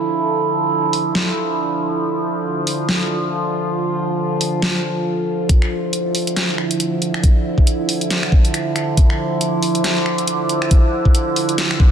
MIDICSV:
0, 0, Header, 1, 3, 480
1, 0, Start_track
1, 0, Key_signature, -1, "minor"
1, 0, Tempo, 434783
1, 308, Time_signature, 4, 2, 24, 8
1, 13153, End_track
2, 0, Start_track
2, 0, Title_t, "Synth drone"
2, 0, Program_c, 0, 95
2, 0, Note_on_c, 0, 50, 81
2, 0, Note_on_c, 0, 53, 74
2, 0, Note_on_c, 0, 64, 89
2, 2191, Note_off_c, 0, 64, 0
2, 2232, Note_on_c, 0, 65, 90
2, 6024, Note_off_c, 0, 50, 0
2, 6025, Note_off_c, 0, 53, 0
2, 6032, Note_off_c, 0, 65, 0
2, 6069, Note_on_c, 0, 53, 74
2, 6069, Note_on_c, 0, 64, 89
2, 6070, Note_on_c, 0, 50, 83
2, 13153, Note_off_c, 0, 50, 0
2, 13153, Note_off_c, 0, 53, 0
2, 13153, Note_off_c, 0, 64, 0
2, 13153, End_track
3, 0, Start_track
3, 0, Title_t, "Drums"
3, 1028, Note_on_c, 9, 46, 83
3, 1139, Note_off_c, 9, 46, 0
3, 1270, Note_on_c, 9, 38, 117
3, 1380, Note_off_c, 9, 38, 0
3, 2947, Note_on_c, 9, 46, 80
3, 3058, Note_off_c, 9, 46, 0
3, 3187, Note_on_c, 9, 38, 118
3, 3297, Note_off_c, 9, 38, 0
3, 4866, Note_on_c, 9, 46, 85
3, 4977, Note_off_c, 9, 46, 0
3, 5105, Note_on_c, 9, 38, 119
3, 5216, Note_off_c, 9, 38, 0
3, 6065, Note_on_c, 9, 36, 116
3, 6066, Note_on_c, 9, 42, 77
3, 6175, Note_off_c, 9, 36, 0
3, 6176, Note_off_c, 9, 42, 0
3, 6205, Note_on_c, 9, 26, 57
3, 6316, Note_off_c, 9, 26, 0
3, 6546, Note_on_c, 9, 42, 79
3, 6657, Note_off_c, 9, 42, 0
3, 6786, Note_on_c, 9, 46, 86
3, 6896, Note_off_c, 9, 46, 0
3, 6926, Note_on_c, 9, 42, 53
3, 7027, Note_off_c, 9, 42, 0
3, 7027, Note_on_c, 9, 38, 114
3, 7027, Note_on_c, 9, 42, 81
3, 7137, Note_off_c, 9, 38, 0
3, 7137, Note_off_c, 9, 42, 0
3, 7267, Note_on_c, 9, 26, 47
3, 7377, Note_off_c, 9, 26, 0
3, 7405, Note_on_c, 9, 42, 52
3, 7507, Note_off_c, 9, 42, 0
3, 7507, Note_on_c, 9, 42, 79
3, 7617, Note_off_c, 9, 42, 0
3, 7748, Note_on_c, 9, 42, 53
3, 7859, Note_off_c, 9, 42, 0
3, 7886, Note_on_c, 9, 26, 74
3, 7987, Note_on_c, 9, 36, 117
3, 7988, Note_on_c, 9, 42, 77
3, 7996, Note_off_c, 9, 26, 0
3, 8098, Note_off_c, 9, 36, 0
3, 8098, Note_off_c, 9, 42, 0
3, 8365, Note_on_c, 9, 36, 63
3, 8468, Note_on_c, 9, 42, 78
3, 8476, Note_off_c, 9, 36, 0
3, 8579, Note_off_c, 9, 42, 0
3, 8708, Note_on_c, 9, 46, 87
3, 8818, Note_off_c, 9, 46, 0
3, 8847, Note_on_c, 9, 42, 52
3, 8948, Note_off_c, 9, 42, 0
3, 8948, Note_on_c, 9, 38, 121
3, 8948, Note_on_c, 9, 42, 81
3, 9058, Note_off_c, 9, 38, 0
3, 9058, Note_off_c, 9, 42, 0
3, 9087, Note_on_c, 9, 26, 73
3, 9187, Note_on_c, 9, 36, 108
3, 9198, Note_off_c, 9, 26, 0
3, 9298, Note_off_c, 9, 36, 0
3, 9325, Note_on_c, 9, 42, 52
3, 9429, Note_off_c, 9, 42, 0
3, 9429, Note_on_c, 9, 26, 48
3, 9429, Note_on_c, 9, 42, 76
3, 9539, Note_off_c, 9, 26, 0
3, 9539, Note_off_c, 9, 42, 0
3, 9668, Note_on_c, 9, 26, 48
3, 9668, Note_on_c, 9, 42, 51
3, 9778, Note_off_c, 9, 26, 0
3, 9778, Note_off_c, 9, 42, 0
3, 9907, Note_on_c, 9, 36, 122
3, 9908, Note_on_c, 9, 42, 75
3, 10018, Note_off_c, 9, 36, 0
3, 10018, Note_off_c, 9, 42, 0
3, 10047, Note_on_c, 9, 26, 60
3, 10157, Note_off_c, 9, 26, 0
3, 10388, Note_on_c, 9, 42, 74
3, 10498, Note_off_c, 9, 42, 0
3, 10626, Note_on_c, 9, 46, 86
3, 10737, Note_off_c, 9, 46, 0
3, 10763, Note_on_c, 9, 42, 51
3, 10866, Note_off_c, 9, 42, 0
3, 10866, Note_on_c, 9, 38, 125
3, 10866, Note_on_c, 9, 42, 75
3, 10976, Note_off_c, 9, 38, 0
3, 10976, Note_off_c, 9, 42, 0
3, 11105, Note_on_c, 9, 26, 51
3, 11216, Note_off_c, 9, 26, 0
3, 11243, Note_on_c, 9, 42, 50
3, 11344, Note_off_c, 9, 42, 0
3, 11344, Note_on_c, 9, 42, 76
3, 11454, Note_off_c, 9, 42, 0
3, 11585, Note_on_c, 9, 42, 51
3, 11696, Note_off_c, 9, 42, 0
3, 11723, Note_on_c, 9, 26, 79
3, 11824, Note_on_c, 9, 42, 74
3, 11825, Note_on_c, 9, 36, 124
3, 11833, Note_off_c, 9, 26, 0
3, 11934, Note_off_c, 9, 42, 0
3, 11936, Note_off_c, 9, 36, 0
3, 12203, Note_on_c, 9, 36, 62
3, 12305, Note_on_c, 9, 42, 74
3, 12314, Note_off_c, 9, 36, 0
3, 12416, Note_off_c, 9, 42, 0
3, 12545, Note_on_c, 9, 46, 85
3, 12656, Note_off_c, 9, 46, 0
3, 12683, Note_on_c, 9, 42, 49
3, 12785, Note_off_c, 9, 42, 0
3, 12785, Note_on_c, 9, 38, 125
3, 12785, Note_on_c, 9, 42, 75
3, 12896, Note_off_c, 9, 38, 0
3, 12896, Note_off_c, 9, 42, 0
3, 12926, Note_on_c, 9, 26, 79
3, 13025, Note_on_c, 9, 36, 107
3, 13036, Note_off_c, 9, 26, 0
3, 13136, Note_off_c, 9, 36, 0
3, 13153, End_track
0, 0, End_of_file